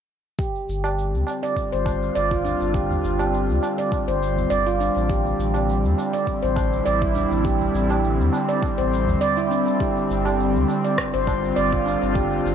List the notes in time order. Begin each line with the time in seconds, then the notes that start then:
0.38 D3 G4, kick, shaker
0.55 C4, shaker
0.68 G1 G3, shaker
0.84 G4, tabla na, shaker
0.99 shaker
1.13 D2, shaker
1.22 F4
1.27 tabla na, shaker
1.43 D5, tabla tin, shaker
1.56 kick, shaker
1.72 G1 C5, shaker
1.86 kick, tabla na, shaker
2.03 shaker
2.15 G1 D5, shaker
2.31 F4, kick, tabla tin, shaker
2.45 D4, tabla ge, shaker
2.61 G1, shaker
2.74 G4, kick, shaker
2.91 tabla ge, shaker
3.04 G1, shaker
3.19 G4, tabla na, shaker
3.34 shaker
3.49 D2, shaker
3.63 tabla na, shaker
3.78 D5, tabla tin, shaker
3.92 kick, tabla na, shaker
4.08 G1 C5, shaker
4.23 shaker
4.36 tabla ge, shaker
4.50 G1 D5, shaker
4.67 F4, tabla tin, shaker
4.80 D4, shaker
4.96 A1, tabla tin, shaker
5.09 G4, kick, shaker
5.27 shaker
5.39 A1, shaker
5.54 G4, tabla na, shaker
5.69 shaker
5.84 E2, shaker
5.98 tabla na, shaker
6.10 E4 D5
6.14 tabla tin, shaker
6.27 kick, shaker
6.43 A1 C5, shaker
6.56 kick, tabla na, shaker
6.73 shaker
6.86 A1 D5, shaker
7.01 E4, kick, tabla tin, shaker
7.15 D4, tabla ge, shaker
7.31 A1, shaker
7.45 G4, kick, shaker
7.60 tabla ge, shaker
7.74 A1, shaker
7.90 G4, tabla na, shaker
8.04 shaker
8.19 E2, shaker
8.33 tabla na, shaker
8.49 D5, tabla tin, shaker
8.62 kick, tabla na, shaker
8.78 A1 C5, shaker
8.93 shaker
9.08 tabla ge, shaker
9.21 D5, shaker
9.37 E4, tabla tin, shaker
9.51 D4, shaker
9.66 tabla tin, shaker
9.80 G4, kick, shaker
9.97 shaker
10.10 G1, shaker
10.25 G4, tabla na, shaker
10.40 shaker
10.55 D2, shaker
10.68 F4, tabla na, shaker
10.84 D5, shaker
10.98 kick, cross-stick, shaker
11.14 G1 C5, shaker
11.27 kick, tabla na, tabla tin, shaker
11.44 shaker
11.56 G1 D5, shaker
11.72 F4, kick, shaker
11.86 D4, tabla na, shaker
12.02 G1, tabla tin, shaker
12.15 G4, kick, shaker
12.32 tabla tin, shaker
12.45 G1, shaker